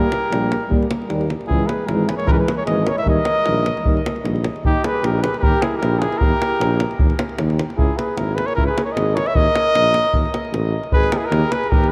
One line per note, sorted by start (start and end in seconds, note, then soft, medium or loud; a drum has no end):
0.00 0.72 G4 medium
0.00 0.72 A#4 loud
0.12 davul high medium
0.30 0.52 A#1 medium
0.30 0.47 G3 medium
0.30 0.48 A#3 medium
0.30 davul high medium
0.52 davul high medium
0.69 0.80 D#2 medium
0.69 0.86 G3 medium
0.69 0.87 A#3 medium
0.69 davul low medium
0.83 davul high soft
0.91 davul high medium
1.02 davul high soft
1.09 1.31 D#2 medium
1.09 1.25 G3 medium
1.09 1.27 A#3 medium
1.09 davul high medium
1.21 davul high soft
1.30 davul high medium
1.41 davul high soft
1.46 1.60 C#2 medium
1.46 1.65 E3 medium
1.46 1.66 G#3 medium
1.46 1.68 E4 medium
1.46 1.69 G#4 medium
1.50 davul low medium
1.67 1.89 G#4 medium
1.67 1.88 B4 medium
1.67 davul high medium
1.87 2.10 G#1 medium
1.87 2.05 E3 soft
1.87 2.09 E4 medium
1.87 2.10 A#4 medium
1.87 davul high medium
1.92 2.07 G#3 medium
2.08 2.16 G#4 soft
2.08 2.16 B4 medium
2.08 davul high medium
2.17 2.25 A#4 medium
2.17 2.26 C#5 medium
2.17 davul high soft
2.25 2.38 C#2 medium
2.25 2.44 E3 medium
2.25 2.28 E4 medium
2.25 2.32 G#4 medium
2.25 2.31 A#4 loud
2.25 2.34 B4 medium
2.25 davul low medium
2.30 2.45 G#3 medium
2.30 2.35 G4 medium
2.30 2.38 A#4 medium
2.36 2.54 G#4 medium
2.36 2.57 B4 medium
2.48 davul high medium
2.54 2.59 A#4 medium
2.54 2.62 C#5 medium
2.63 2.83 G#3 medium
2.63 2.85 G#4 medium
2.63 2.90 D#5 medium
2.67 2.89 G#1 medium
2.67 2.83 E3 medium
2.67 davul high medium
2.83 2.94 A#4 medium
2.83 davul high medium
2.88 2.98 C#5 medium
2.94 3.02 C#5 medium
2.94 3.06 E5 medium
2.98 davul high soft
3.03 3.17 D#2 medium
3.03 3.20 D#3 medium
3.03 3.22 G3 medium
3.03 4.19 A#4 medium
3.03 davul low medium
3.09 4.22 D#5 loud
3.25 davul high medium
3.43 3.68 A#1 loud
3.43 3.60 D#3 medium
3.43 3.60 G3 soft
3.43 davul high medium
3.66 davul high medium
3.77 davul high soft
3.83 3.97 D#2 medium
3.83 4.00 D#3 medium
3.83 3.99 G3 medium
3.83 davul low medium
3.97 davul high soft
4.06 davul high medium
4.16 davul high soft
4.24 4.46 A#1 medium
4.24 4.40 D#3 soft
4.24 4.40 G3 soft
4.24 davul high medium
4.36 davul high soft
4.44 davul high medium
4.56 davul high soft
4.64 4.75 D#2 medium
4.64 4.85 D#4 medium
4.64 4.87 G4 medium
4.64 davul low medium
4.83 5.04 G#4 medium
4.83 5.07 B4 medium
4.83 davul high medium
5.02 5.25 A#1 loud
5.02 5.22 G4 medium
5.02 5.24 A#4 medium
5.02 davul high medium
5.21 5.36 G#4 medium
5.21 5.38 B4 medium
5.21 davul high medium
5.34 5.42 G#4 medium
5.34 5.44 B4 medium
5.34 davul high soft
5.41 5.53 D#2 medium
5.41 5.65 G4 loud
5.41 5.63 A#4 loud
5.41 davul low medium
5.62 5.82 E4 medium
5.62 5.77 G#4 medium
5.62 davul high medium
5.78 6.01 A#4 medium
5.82 6.03 A#1 loud
5.82 6.03 G4 medium
5.82 davul high medium
5.99 6.24 E4 medium
5.99 6.20 G#4 medium
5.99 davul high medium
6.12 davul high soft
6.18 6.32 D#2 medium
6.18 6.98 A#4 loud
6.18 davul low medium
6.22 7.00 G4 medium
6.42 davul high medium
6.60 6.82 A#1 loud
6.60 davul high medium
6.80 davul high medium
6.91 davul high soft
6.99 7.11 D#2 medium
6.99 davul low loud
7.10 davul high soft
7.19 davul high medium
7.29 davul high soft
7.38 7.61 D#2 medium
7.38 davul high medium
7.50 davul high soft
7.59 davul high medium
7.70 davul high soft
7.77 7.89 C#2 medium
7.77 7.98 E4 medium
7.77 7.99 G#4 medium
7.77 davul low medium
7.97 8.19 G#4 medium
7.97 8.19 B4 medium
7.97 davul high medium
8.17 8.39 G#1 medium
8.17 8.37 E4 medium
8.17 8.36 A#4 medium
8.17 davul high medium
8.35 8.49 G#4 medium
8.35 8.48 B4 medium
8.35 davul high medium
8.46 8.56 A#4 medium
8.46 8.55 C#5 medium
8.46 davul high soft
8.55 8.67 C#2 medium
8.55 8.67 E4 medium
8.55 8.66 A#4 medium
8.55 davul low medium
8.67 8.86 G#4 medium
8.67 8.84 B4 medium
8.78 davul high medium
8.85 8.97 A#4 medium
8.85 8.94 C#5 medium
8.92 9.17 G#1 loud
8.92 9.16 G#4 medium
8.92 9.17 D#5 medium
8.97 davul high medium
9.14 9.29 A#4 medium
9.14 9.28 C#5 loud
9.14 davul high medium
9.26 9.36 C#5 medium
9.26 9.37 E5 medium
9.26 davul high soft
9.34 9.46 D#2 loud
9.34 10.53 A#4 medium
9.34 10.53 D#5 loud
9.34 davul low medium
9.56 davul high medium
9.75 9.97 A#1 medium
9.75 davul high medium
9.94 davul high medium
10.05 davul high soft
10.13 10.25 D#2 medium
10.13 davul low medium
10.25 davul high soft
10.34 davul high medium
10.45 davul high soft
10.52 10.74 A1 loud
10.52 davul high medium
10.83 davul high soft
10.92 11.14 G#1 medium
10.92 11.15 G#4 medium
10.92 11.14 B4 loud
10.92 davul low medium
11.04 davul high soft
11.12 11.21 G4 medium
11.12 11.18 A#4 medium
11.12 davul high medium
11.17 11.30 E4 medium
11.17 11.27 G#4 medium
11.26 11.54 G4 medium
11.26 11.53 A#4 medium
11.31 11.42 D#2 loud
11.31 davul high medium
11.52 11.73 G#4 medium
11.52 11.71 B4 medium
11.52 davul high medium
11.64 davul high soft
11.70 11.92 D#2 medium
11.70 11.92 G4 medium
11.70 11.91 A#4 loud
11.70 davul low loud
11.84 davul high soft